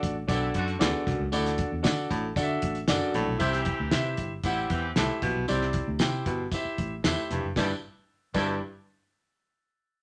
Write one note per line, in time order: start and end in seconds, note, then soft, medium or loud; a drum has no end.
0.00 0.24 A1 loud
0.00 0.14 D4 medium
0.00 0.15 F#4 medium
0.00 0.15 A4 medium
0.00 0.15 D5 loud
0.00 kick medium
0.00 closed hi-hat medium
0.28 0.50 B1 loud
0.28 0.50 E3 medium
0.28 0.50 C4 medium
0.28 0.67 D4 medium
0.28 0.50 E4 loud
0.28 0.67 F#4 medium
0.28 0.67 A4 medium
0.28 0.67 D5 medium
0.28 kick medium
0.28 closed hi-hat medium
0.28 tambourine medium
0.54 0.76 F#2 medium
0.54 0.76 D3 loud
0.54 0.76 A3 medium
0.54 0.76 F#4 loud
0.54 kick medium
0.54 closed hi-hat medium
0.68 closed hi-hat soft
0.79 0.91 D2 medium
0.79 1.01 E2 medium
0.79 1.19 D4 medium
0.79 1.19 F#4 medium
0.79 1.19 A4 medium
0.79 1.19 D5 loud
0.79 snare loud
0.79 closed hi-hat medium
0.79 tambourine loud
1.06 1.17 C2 medium
1.06 1.27 F#2 medium
1.06 kick loud
1.06 snare soft
1.06 closed hi-hat medium
1.19 1.30 C#2 medium
1.32 1.64 D2 loud
1.32 1.53 A2 medium
1.32 2.06 D3 medium
1.32 1.71 D4 loud
1.32 1.72 F#4 medium
1.32 1.72 A4 medium
1.32 1.72 D5 medium
1.32 closed hi-hat medium
1.32 tambourine medium
1.46 snare soft
1.46 closed hi-hat medium
1.58 kick loud
1.58 closed hi-hat medium
1.72 1.82 E2 medium
1.83 2.06 D3 loud
1.83 2.23 D4 medium
1.83 2.23 F#4 medium
1.83 2.23 A4 medium
1.83 2.23 D5 loud
1.83 snare loud
1.83 closed hi-hat loud
1.83 tambourine loud
2.11 2.32 A1 loud
2.11 2.31 A2 medium
2.11 kick medium
2.11 closed hi-hat medium
2.36 2.57 D3 loud
2.36 2.75 D4 medium
2.36 2.75 F#4 medium
2.36 2.75 A4 medium
2.36 2.43 D5 medium
2.36 kick medium
2.36 closed hi-hat loud
2.36 tambourine medium
2.43 2.78 E5 loud
2.62 2.83 A1 medium
2.62 kick medium
2.62 closed hi-hat medium
2.75 closed hi-hat soft
2.88 2.99 F#1 loud
2.88 3.10 F#2 medium
2.88 3.27 D4 loud
2.88 3.27 F#4 medium
2.88 3.28 A4 medium
2.88 3.28 D5 loud
2.88 snare loud
2.88 closed hi-hat medium
2.88 tambourine loud
3.14 3.25 A#1 loud
3.14 3.35 A2 medium
3.14 snare soft
3.14 closed hi-hat medium
3.27 3.38 B1 medium
3.39 3.72 C2 loud
3.39 4.14 C3 medium
3.39 3.61 C3 medium
3.39 4.15 E3 loud
3.39 4.14 C4 loud
3.39 3.78 E4 medium
3.39 3.79 G4 medium
3.39 4.14 G4 loud
3.39 3.79 C5 medium
3.39 3.79 E5 loud
3.39 kick loud
3.39 closed hi-hat medium
3.39 tambourine medium
3.53 snare soft
3.53 closed hi-hat medium
3.65 kick loud
3.65 closed hi-hat medium
3.80 3.90 D2 medium
3.91 4.13 C3 loud
3.91 4.31 E4 medium
3.91 4.31 G4 medium
3.91 4.31 C5 medium
3.91 4.31 E5 loud
3.91 snare loud
3.91 closed hi-hat medium
3.91 tambourine loud
4.17 4.39 G1 medium
4.17 kick medium
4.17 closed hi-hat medium
4.44 4.65 A1 loud
4.44 4.66 C3 medium
4.44 4.66 G3 loud
4.44 4.84 E4 loud
4.44 4.66 E4 loud
4.44 4.83 G4 medium
4.44 4.84 C5 medium
4.44 4.84 F#5 loud
4.44 kick medium
4.44 closed hi-hat medium
4.44 tambourine medium
4.69 4.91 E2 medium
4.69 4.91 E3 loud
4.69 4.90 C4 loud
4.69 4.91 G4 loud
4.69 kick medium
4.69 closed hi-hat medium
4.96 5.07 C2 loud
4.96 5.17 A2 medium
4.96 5.35 E4 medium
4.96 5.36 G4 medium
4.96 5.36 C5 medium
4.96 5.36 E5 loud
4.96 snare loud
4.96 closed hi-hat medium
4.96 tambourine loud
5.22 5.33 A#1 loud
5.22 5.43 B2 medium
5.22 kick loud
5.22 closed hi-hat medium
5.35 5.46 B1 medium
5.48 5.80 C2 loud
5.48 5.69 C3 medium
5.48 6.23 C3 medium
5.48 5.87 E4 medium
5.48 5.87 G4 medium
5.48 5.87 C5 medium
5.48 5.88 D5 loud
5.48 closed hi-hat medium
5.48 tambourine medium
5.61 snare soft
5.73 kick loud
5.73 closed hi-hat medium
5.88 5.98 D2 loud
5.99 6.21 C3 medium
5.99 6.40 E4 medium
5.99 6.40 G4 medium
5.99 6.40 C5 medium
5.99 6.40 G5 loud
5.99 snare loud
5.99 closed hi-hat medium
5.99 tambourine loud
6.26 6.47 G1 medium
6.26 6.47 B2 medium
6.26 kick medium
6.26 closed hi-hat medium
6.52 6.92 E4 medium
6.52 6.92 G4 medium
6.52 6.92 C5 medium
6.52 6.92 E5 loud
6.52 kick medium
6.52 closed hi-hat medium
6.52 tambourine medium
6.65 muted fingered electric bass stroke soft
6.78 6.99 A1 medium
6.78 kick medium
6.78 closed hi-hat medium
7.04 7.15 E2 loud
7.04 7.25 A2 medium
7.04 7.44 E4 medium
7.04 7.44 G4 medium
7.04 7.44 C5 medium
7.04 7.44 E5 loud
7.04 snare loud
7.04 closed hi-hat medium
7.04 tambourine loud
7.30 7.41 F1 medium
7.30 7.52 G2 medium
7.30 snare soft
7.30 closed hi-hat medium
7.44 7.54 F#1 medium
7.56 7.71 G1 loud
7.56 7.72 G2 medium
7.56 7.68 B2 medium
7.56 7.67 G3 medium
7.56 7.67 E4 medium
7.56 7.72 E4 medium
7.56 7.71 G4 medium
7.56 7.72 B4 medium
7.56 7.72 D5 medium
7.56 kick loud
7.56 snare medium
7.56 tambourine medium
8.34 8.59 G1 loud
8.34 8.59 G2 medium
8.34 8.53 B2 medium
8.34 8.53 G3 medium
8.34 8.53 E4 medium
8.34 8.59 E4 medium
8.34 8.59 G4 medium
8.34 8.59 B4 medium
8.34 8.59 D5 medium
8.34 kick medium
8.34 crash medium
8.34 tambourine medium